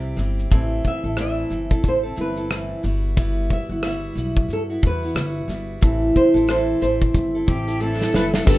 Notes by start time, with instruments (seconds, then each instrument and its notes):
Already playing: upright bass C2, steel-string acoustic guitar C3 G3 C4 E4 G4, nylon-string guitar G4
0.16 upright bass G1, steel-string acoustic guitar G3 C4 E4 G4, cross-stick, shaker
0.39 shaker
0.50 upright bass A1, steel-string acoustic guitar A2 E3 C4 E4 A4, kick, shaker
0.85 nylon-string guitar E5, kick, shaker
1.04 upright bass A1, steel-string acoustic guitar C4 E4 A4
1.17 steel-string acoustic guitar A2 E3 C4 E4 A4, nylon-string guitar E5, cross-stick, shaker
1.50 upright bass G1, steel-string acoustic guitar E3 C4 E4 A4, shaker
1.71 steel-string acoustic guitar C4 E4 A4, kick, shaker
1.83 upright bass A1, kick, shaker
1.88 nylon-string guitar C5
2.03 steel-string acoustic guitar C4 E4 A4
2.16 upright bass G1, steel-string acoustic guitar E3 C4 E4 A4, shaker
2.21 nylon-string guitar B4
2.37 steel-string acoustic guitar C4 E4 A4, shaker
2.50 steel-string acoustic guitar A2 E3 C4 E4 A4, cross-stick, shaker
2.83 upright bass G1, steel-string acoustic guitar G3 B3 E4 F#4, shaker
3.16 steel-string acoustic guitar G3 B3 E4 F#4, kick, shaker
3.50 nylon-string guitar E5, kick, shaker
3.69 upright bass G1, steel-string acoustic guitar B3 E4 F#4
3.83 steel-string acoustic guitar G3 B3 E4 F#4, nylon-string guitar E5, cross-stick, shaker
4.15 upright bass B1, steel-string acoustic guitar G3 B3 E4 F#4, shaker
4.37 kick
4.48 upright bass G2, shaker
4.53 nylon-string guitar A4
4.70 steel-string acoustic guitar B3 E4 F#4
4.82 upright bass E2, steel-string acoustic guitar G3 B3 E4 F#4, kick, shaker
4.87 nylon-string guitar B4
5.02 steel-string acoustic guitar B3 E4 F#4
5.15 upright bass G1, steel-string acoustic guitar G3 B3 E4 F#4, cross-stick, shaker
5.48 upright bass G1, steel-string acoustic guitar G3 B3 E4 F#4, cross-stick, shaker
5.81 upright bass A1, steel-string acoustic guitar A2 E3 C4 E4 A4, kick, shaker
6.16 nylon-string guitar C5, kick, shaker
6.34 upright bass A1, steel-string acoustic guitar C4 E4 A4, shaker
6.47 steel-string acoustic guitar A2 E3 C4 E4 A4, nylon-string guitar C5, cross-stick, shaker
6.81 upright bass A1, steel-string acoustic guitar E3 C4 E4 A4, nylon-string guitar C5, shaker
7.02 kick, shaker
7.14 upright bass G1, kick, shaker
7.35 steel-string acoustic guitar C4 E4 A4
7.47 upright bass A1, steel-string acoustic guitar E3 C4 E4 A4, cello G4, kick, shaker
7.67 steel-string acoustic guitar C4 E4 A4, shaker
7.80 steel-string acoustic guitar A2 E3 C4 E4 A4, cello A4
8.01 snare
8.12 upright bass F#1, steel-string acoustic guitar E3 C4 E4 A4, nylon-string guitar B4, snare
8.34 snare
8.45 upright bass G1, steel-string acoustic guitar G2 D3 G3 B3 D4 G4, reed electric piano D4 G4 B4, nylon-string guitar A4, kick, crash